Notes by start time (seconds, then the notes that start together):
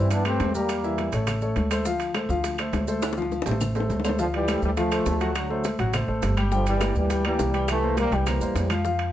Already playing: G2 E3 E4 E5
0.11 B3 D4, high bongo, high conga, high timbale, maracas
0.25 G3 A3 C4 G4 B4, high bongo, high conga, high timbale, claves, maracas
0.40 E2, high bongo, low bongo, high conga, high timbale, low timbale, maracas
0.54 G3 A#3 G4 A#4, high bongo, high conga, maracas
0.69 high bongo, high conga, high timbale, claves, maracas
0.84 E3 E4 E5, high bongo, high conga, maracas
0.98 high bongo, high conga, high timbale, maracas
1.12 A1 A3 A4 C#5, high conga, high timbale, maracas
1.27 high bongo, high conga, low conga, high timbale, claves, maracas
1.42 A3 A4 C#5, high bongo, high conga, maracas
1.56 D2, high bongo, low bongo, high conga, high timbale, maracas
1.71 A3 A4 C5, high bongo, high conga, high timbale, claves, maracas
1.85 F3 F4 F5, high bongo, high conga, maracas
2.00 high bongo, high conga, high timbale, maracas
2.14 A3 A4 C5, high bongo, high conga, high timbale, claves, maracas
2.29 D2 F3 F4 F5, maracas
2.44 high bongo, high conga, high timbale, maracas
2.58 A3 A4 C5, high bongo, high conga, high timbale, claves, maracas
2.73 D2, high bongo, low bongo, high conga, high timbale, low timbale, maracas
2.88 A3 A4 C5, high bongo, high conga, maracas
3.02 high bongo, high timbale, claves, maracas
3.13 high bongo
3.17 F3 F4 F5, high conga, maracas
3.22 low bongo
3.32 low bongo, high conga, maracas
3.42 A1, low bongo, low timbale
3.46 A3 A4 C5, high conga, maracas
3.51 low bongo
3.61 low bongo, high conga, low conga, claves, maracas
3.75 A3 A4 C5, high conga, low timbale, maracas
3.80 low bongo
3.90 D2, high conga, low timbale, maracas
4.00 low bongo
4.04 A3 A4 C5, high conga, low timbale, claves, maracas
4.09 low bongo
4.19 D3 F3 F4 F5, high bongo, high conga, maracas
4.34 E3 G3, high conga, high timbale
4.47 A3 A4 C5, high bongo, high conga, high timbale, low timbale, claves, maracas
4.62 D2 E3 G3, maracas
4.77 F3 A3 F4 F5, high bongo, high conga, high timbale, maracas
4.92 A3 A4 C5, high conga, high timbale, claves, maracas
5.06 D2, high bongo, low bongo, high conga, low timbale, maracas
5.21 F#3 F#4 F#5, high timbale, maracas
5.35 D3 F#3, high bongo, high conga, high timbale, claves, maracas
5.50 A3 A4 C5, high bongo, high conga
5.64 high bongo, high conga, high timbale, low timbale, maracas
5.79 A1 F#3 F#4 F#5, high conga, high timbale, maracas
5.93 A3 A4 C5, high bongo, high conga, low conga, high timbale, claves, maracas
6.07 A1 A3 A4 C5, high bongo, high conga
6.22 G1, high bongo, low bongo, high conga, high timbale, low timbale, maracas
6.37 G3 G4 G5, high bongo, high conga, high timbale, claves, maracas
6.51 D3 F3 G3 G4 G5, high bongo, high conga, maracas
6.66 E3 G3, high conga, high timbale, maracas
6.80 A#3 A#4 D5, high bongo, high conga, high timbale, low timbale, claves, maracas
6.95 D2 E3 G3, high conga, maracas
7.10 G3 G4 G5, high bongo, high conga, high timbale, maracas
7.24 E3 G3 A#3 A#4 D5, high conga, high timbale, claves
7.39 C2, high bongo, low bongo, high conga, low timbale, maracas
7.54 G3 G4 G5, high timbale, maracas
7.68 E3 A3, high bongo, high conga, high timbale, claves, maracas
7.83 A#3 A#4 C5, high bongo, high conga
7.97 G3 A#3, high bongo, high conga, high timbale, low timbale, maracas
8.11 C2 E3 G3 G4 G5, high timbale, maracas
8.26 A#3 A#4 C5, high bongo, high conga, low conga, high timbale, claves, maracas
8.41 E2 A#3 A#4 C5, high bongo, high conga, maracas
8.55 F2, high bongo, low bongo, high conga, high timbale, low timbale, maracas
8.70 F3 F4 F5, high bongo, high conga, high timbale, claves, maracas
8.85 F3 F4 F5, high bongo, maracas
8.99 high conga, high timbale